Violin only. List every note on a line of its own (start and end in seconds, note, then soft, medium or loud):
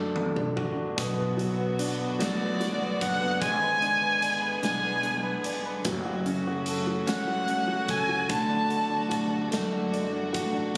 0.00 0.16 D5 loud
2.21 3.03 D5 medium
3.02 3.42 F#5 loud
3.42 4.60 G#5 loud
4.64 5.51 G#5 loud
7.07 7.92 F#5 medium
7.90 8.31 G#5 loud
8.31 9.49 A5 loud